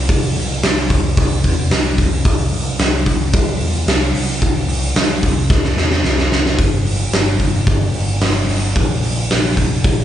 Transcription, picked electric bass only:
0, 0, Header, 1, 2, 480
1, 0, Start_track
1, 0, Tempo, 542005
1, 77, Time_signature, 4, 2, 24, 8
1, 8895, End_track
2, 0, Start_track
2, 0, Title_t, "Picked electric bass"
2, 0, Program_c, 0, 34
2, 78, Note_on_c, 0, 36, 95
2, 300, Note_off_c, 0, 36, 0
2, 330, Note_on_c, 0, 36, 95
2, 546, Note_off_c, 0, 36, 0
2, 567, Note_on_c, 0, 36, 87
2, 784, Note_off_c, 0, 36, 0
2, 799, Note_on_c, 0, 36, 101
2, 1020, Note_off_c, 0, 36, 0
2, 1037, Note_on_c, 0, 36, 94
2, 1259, Note_off_c, 0, 36, 0
2, 1273, Note_on_c, 0, 40, 91
2, 1496, Note_off_c, 0, 40, 0
2, 1512, Note_on_c, 0, 36, 91
2, 1736, Note_off_c, 0, 36, 0
2, 1757, Note_on_c, 0, 36, 90
2, 1978, Note_off_c, 0, 36, 0
2, 1997, Note_on_c, 0, 36, 97
2, 2218, Note_off_c, 0, 36, 0
2, 2230, Note_on_c, 0, 36, 87
2, 2454, Note_off_c, 0, 36, 0
2, 2470, Note_on_c, 0, 36, 92
2, 2694, Note_off_c, 0, 36, 0
2, 2709, Note_on_c, 0, 36, 91
2, 2933, Note_off_c, 0, 36, 0
2, 2956, Note_on_c, 0, 36, 88
2, 3177, Note_off_c, 0, 36, 0
2, 3189, Note_on_c, 0, 40, 81
2, 3413, Note_off_c, 0, 40, 0
2, 3421, Note_on_c, 0, 36, 99
2, 3649, Note_off_c, 0, 36, 0
2, 3668, Note_on_c, 0, 36, 87
2, 3892, Note_off_c, 0, 36, 0
2, 3917, Note_on_c, 0, 36, 91
2, 4137, Note_off_c, 0, 36, 0
2, 4143, Note_on_c, 0, 36, 88
2, 4369, Note_off_c, 0, 36, 0
2, 4381, Note_on_c, 0, 36, 80
2, 4608, Note_off_c, 0, 36, 0
2, 4630, Note_on_c, 0, 36, 96
2, 4853, Note_off_c, 0, 36, 0
2, 4870, Note_on_c, 0, 36, 94
2, 5093, Note_off_c, 0, 36, 0
2, 5111, Note_on_c, 0, 40, 77
2, 5333, Note_off_c, 0, 40, 0
2, 5352, Note_on_c, 0, 36, 84
2, 5574, Note_off_c, 0, 36, 0
2, 5582, Note_on_c, 0, 36, 88
2, 5809, Note_off_c, 0, 36, 0
2, 5830, Note_on_c, 0, 31, 88
2, 6235, Note_off_c, 0, 31, 0
2, 6304, Note_on_c, 0, 31, 93
2, 6510, Note_off_c, 0, 31, 0
2, 6550, Note_on_c, 0, 31, 91
2, 6754, Note_off_c, 0, 31, 0
2, 6792, Note_on_c, 0, 31, 84
2, 6995, Note_off_c, 0, 31, 0
2, 7031, Note_on_c, 0, 31, 79
2, 7234, Note_off_c, 0, 31, 0
2, 7265, Note_on_c, 0, 31, 85
2, 7471, Note_off_c, 0, 31, 0
2, 7518, Note_on_c, 0, 31, 87
2, 7718, Note_off_c, 0, 31, 0
2, 7754, Note_on_c, 0, 34, 87
2, 7956, Note_off_c, 0, 34, 0
2, 7996, Note_on_c, 0, 34, 93
2, 8198, Note_off_c, 0, 34, 0
2, 8239, Note_on_c, 0, 34, 91
2, 8642, Note_off_c, 0, 34, 0
2, 8720, Note_on_c, 0, 34, 87
2, 8895, Note_off_c, 0, 34, 0
2, 8895, End_track
0, 0, End_of_file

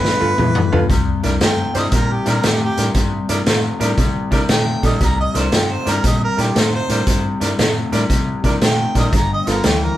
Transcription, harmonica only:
0, 0, Header, 1, 2, 480
1, 0, Start_track
1, 0, Tempo, 514580
1, 832, Time_signature, 4, 2, 24, 8
1, 9304, End_track
2, 0, Start_track
2, 0, Title_t, "Harmonica"
2, 0, Program_c, 0, 22
2, 0, Note_on_c, 0, 71, 113
2, 811, Note_off_c, 0, 71, 0
2, 1341, Note_on_c, 0, 79, 85
2, 1636, Note_off_c, 0, 79, 0
2, 1655, Note_on_c, 0, 75, 79
2, 1819, Note_on_c, 0, 70, 85
2, 1833, Note_off_c, 0, 75, 0
2, 1979, Note_on_c, 0, 67, 73
2, 1993, Note_off_c, 0, 70, 0
2, 2145, Note_on_c, 0, 70, 66
2, 2159, Note_off_c, 0, 67, 0
2, 2300, Note_on_c, 0, 67, 75
2, 2314, Note_off_c, 0, 70, 0
2, 2441, Note_off_c, 0, 67, 0
2, 2461, Note_on_c, 0, 67, 86
2, 2704, Note_off_c, 0, 67, 0
2, 4205, Note_on_c, 0, 79, 89
2, 4509, Note_off_c, 0, 79, 0
2, 4523, Note_on_c, 0, 75, 74
2, 4672, Note_off_c, 0, 75, 0
2, 4696, Note_on_c, 0, 82, 78
2, 4839, Note_off_c, 0, 82, 0
2, 4855, Note_on_c, 0, 75, 83
2, 5023, Note_on_c, 0, 72, 76
2, 5037, Note_off_c, 0, 75, 0
2, 5163, Note_off_c, 0, 72, 0
2, 5180, Note_on_c, 0, 79, 81
2, 5339, Note_on_c, 0, 72, 81
2, 5353, Note_off_c, 0, 79, 0
2, 5502, Note_on_c, 0, 70, 79
2, 5516, Note_off_c, 0, 72, 0
2, 5642, Note_off_c, 0, 70, 0
2, 5654, Note_on_c, 0, 75, 78
2, 5798, Note_off_c, 0, 75, 0
2, 5819, Note_on_c, 0, 70, 92
2, 5978, Note_on_c, 0, 67, 81
2, 5992, Note_off_c, 0, 70, 0
2, 6140, Note_on_c, 0, 72, 79
2, 6154, Note_off_c, 0, 67, 0
2, 6282, Note_off_c, 0, 72, 0
2, 6298, Note_on_c, 0, 72, 96
2, 6752, Note_off_c, 0, 72, 0
2, 8058, Note_on_c, 0, 79, 89
2, 8357, Note_off_c, 0, 79, 0
2, 8379, Note_on_c, 0, 75, 77
2, 8523, Note_off_c, 0, 75, 0
2, 8544, Note_on_c, 0, 82, 75
2, 8685, Note_off_c, 0, 82, 0
2, 8703, Note_on_c, 0, 75, 83
2, 8867, Note_on_c, 0, 70, 82
2, 8881, Note_off_c, 0, 75, 0
2, 9021, Note_on_c, 0, 79, 79
2, 9035, Note_off_c, 0, 70, 0
2, 9184, Note_on_c, 0, 70, 82
2, 9198, Note_off_c, 0, 79, 0
2, 9304, Note_off_c, 0, 70, 0
2, 9304, End_track
0, 0, End_of_file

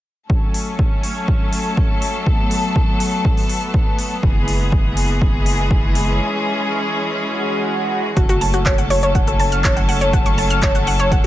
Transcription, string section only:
0, 0, Header, 1, 2, 480
1, 0, Start_track
1, 0, Key_signature, 3, "minor"
1, 0, Tempo, 491803
1, 290, Time_signature, 4, 2, 24, 8
1, 10996, End_track
2, 0, Start_track
2, 0, Title_t, "String section"
2, 0, Program_c, 0, 48
2, 288, Note_on_c, 0, 61, 66
2, 289, Note_on_c, 0, 54, 72
2, 289, Note_on_c, 0, 57, 65
2, 290, Note_on_c, 0, 69, 79
2, 2190, Note_off_c, 0, 61, 0
2, 2211, Note_on_c, 0, 59, 65
2, 4091, Note_off_c, 0, 54, 0
2, 4091, Note_off_c, 0, 57, 0
2, 4091, Note_off_c, 0, 69, 0
2, 4130, Note_on_c, 0, 52, 74
2, 4131, Note_on_c, 0, 56, 70
2, 4132, Note_on_c, 0, 68, 83
2, 6012, Note_off_c, 0, 59, 0
2, 6051, Note_on_c, 0, 61, 69
2, 7932, Note_off_c, 0, 52, 0
2, 7932, Note_off_c, 0, 56, 0
2, 7932, Note_off_c, 0, 68, 0
2, 7951, Note_off_c, 0, 61, 0
2, 7972, Note_on_c, 0, 69, 87
2, 7973, Note_on_c, 0, 61, 69
2, 7974, Note_on_c, 0, 54, 72
2, 7974, Note_on_c, 0, 57, 74
2, 10996, Note_off_c, 0, 54, 0
2, 10996, Note_off_c, 0, 57, 0
2, 10996, Note_off_c, 0, 61, 0
2, 10996, Note_off_c, 0, 69, 0
2, 10996, End_track
0, 0, End_of_file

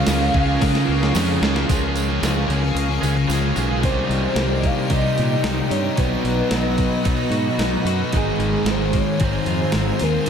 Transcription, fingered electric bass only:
0, 0, Header, 1, 2, 480
1, 0, Start_track
1, 0, Tempo, 537153
1, 1503, Time_signature, 4, 2, 24, 8
1, 9201, End_track
2, 0, Start_track
2, 0, Title_t, "Fingered electric bass"
2, 0, Program_c, 0, 33
2, 61, Note_on_c, 0, 37, 87
2, 262, Note_off_c, 0, 37, 0
2, 302, Note_on_c, 0, 37, 94
2, 503, Note_off_c, 0, 37, 0
2, 548, Note_on_c, 0, 49, 85
2, 746, Note_off_c, 0, 49, 0
2, 787, Note_on_c, 0, 37, 85
2, 985, Note_off_c, 0, 37, 0
2, 1025, Note_on_c, 0, 41, 99
2, 1224, Note_off_c, 0, 41, 0
2, 1260, Note_on_c, 0, 37, 95
2, 1461, Note_off_c, 0, 37, 0
2, 1519, Note_on_c, 0, 37, 90
2, 1969, Note_off_c, 0, 37, 0
2, 1987, Note_on_c, 0, 37, 93
2, 2214, Note_off_c, 0, 37, 0
2, 2220, Note_on_c, 0, 37, 96
2, 2448, Note_off_c, 0, 37, 0
2, 2453, Note_on_c, 0, 37, 90
2, 2687, Note_off_c, 0, 37, 0
2, 2702, Note_on_c, 0, 37, 79
2, 2931, Note_off_c, 0, 37, 0
2, 2938, Note_on_c, 0, 37, 92
2, 3169, Note_off_c, 0, 37, 0
2, 3184, Note_on_c, 0, 35, 92
2, 3424, Note_off_c, 0, 35, 0
2, 3424, Note_on_c, 0, 36, 92
2, 3571, Note_off_c, 0, 36, 0
2, 3654, Note_on_c, 0, 36, 86
2, 3805, Note_off_c, 0, 36, 0
2, 3888, Note_on_c, 0, 36, 89
2, 4188, Note_off_c, 0, 36, 0
2, 4381, Note_on_c, 0, 36, 86
2, 4529, Note_off_c, 0, 36, 0
2, 4633, Note_on_c, 0, 46, 83
2, 4778, Note_off_c, 0, 46, 0
2, 4857, Note_on_c, 0, 36, 89
2, 5006, Note_off_c, 0, 36, 0
2, 5097, Note_on_c, 0, 43, 90
2, 5246, Note_off_c, 0, 43, 0
2, 5344, Note_on_c, 0, 35, 88
2, 5491, Note_off_c, 0, 35, 0
2, 5576, Note_on_c, 0, 35, 88
2, 5726, Note_off_c, 0, 35, 0
2, 5814, Note_on_c, 0, 35, 88
2, 6112, Note_off_c, 0, 35, 0
2, 6310, Note_on_c, 0, 35, 87
2, 6455, Note_off_c, 0, 35, 0
2, 6524, Note_on_c, 0, 44, 75
2, 6678, Note_off_c, 0, 44, 0
2, 6774, Note_on_c, 0, 35, 91
2, 6924, Note_off_c, 0, 35, 0
2, 7011, Note_on_c, 0, 42, 93
2, 7162, Note_off_c, 0, 42, 0
2, 7265, Note_on_c, 0, 32, 94
2, 7411, Note_off_c, 0, 32, 0
2, 7490, Note_on_c, 0, 32, 92
2, 7642, Note_off_c, 0, 32, 0
2, 7722, Note_on_c, 0, 32, 90
2, 8024, Note_off_c, 0, 32, 0
2, 8227, Note_on_c, 0, 32, 97
2, 8373, Note_off_c, 0, 32, 0
2, 8453, Note_on_c, 0, 41, 75
2, 8603, Note_off_c, 0, 41, 0
2, 8698, Note_on_c, 0, 32, 92
2, 8847, Note_off_c, 0, 32, 0
2, 8946, Note_on_c, 0, 39, 88
2, 9092, Note_off_c, 0, 39, 0
2, 9201, End_track
0, 0, End_of_file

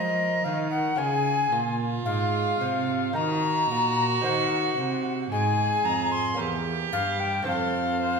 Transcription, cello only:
0, 0, Header, 1, 2, 480
1, 0, Start_track
1, 0, Tempo, 1079137
1, 438, Time_signature, 3, 2, 24, 8
1, 3646, End_track
2, 0, Start_track
2, 0, Title_t, "Cello"
2, 0, Program_c, 0, 42
2, 0, Note_on_c, 0, 53, 91
2, 196, Note_off_c, 0, 53, 0
2, 199, Note_on_c, 0, 51, 84
2, 433, Note_off_c, 0, 51, 0
2, 437, Note_on_c, 0, 49, 86
2, 671, Note_off_c, 0, 49, 0
2, 674, Note_on_c, 0, 46, 91
2, 909, Note_off_c, 0, 46, 0
2, 911, Note_on_c, 0, 44, 92
2, 1152, Note_off_c, 0, 44, 0
2, 1156, Note_on_c, 0, 48, 88
2, 1399, Note_off_c, 0, 48, 0
2, 1404, Note_on_c, 0, 51, 98
2, 1644, Note_off_c, 0, 51, 0
2, 1647, Note_on_c, 0, 46, 92
2, 1883, Note_off_c, 0, 46, 0
2, 1887, Note_on_c, 0, 51, 94
2, 2122, Note_off_c, 0, 51, 0
2, 2125, Note_on_c, 0, 48, 91
2, 2360, Note_off_c, 0, 48, 0
2, 2362, Note_on_c, 0, 44, 100
2, 2598, Note_off_c, 0, 44, 0
2, 2601, Note_on_c, 0, 41, 87
2, 2838, Note_off_c, 0, 41, 0
2, 2841, Note_on_c, 0, 40, 101
2, 3078, Note_off_c, 0, 40, 0
2, 3081, Note_on_c, 0, 43, 91
2, 3318, Note_off_c, 0, 43, 0
2, 3320, Note_on_c, 0, 41, 94
2, 3646, Note_off_c, 0, 41, 0
2, 3646, End_track
0, 0, End_of_file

